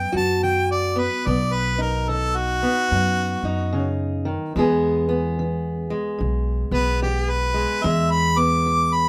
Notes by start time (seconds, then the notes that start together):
Already playing: F#2 B3 G5
0.12 F#2 F#4
0.17 A5
0.43 D#3 G5
0.71 D5
0.96 B3 B4
1.26 B1 B2 B3 D5
1.53 B4
1.78 D#4 A#4
2.09 D#3 A4
2.37 F#4
2.63 B3
2.91 F#2
3.43 F#2 D#4
3.73 C#3
4.25 D#3
4.56 E2 E3 G#3 B3 G#4
5.09 B3
5.39 E3
5.90 G#3
6.18 B1 B2
6.71 B1 B3 B4
7.02 E3 G4
7.30 B4
7.54 G#3
7.84 E2 G#3 E5
8.11 B5
8.37 B3 D6
8.66 E3
8.94 B5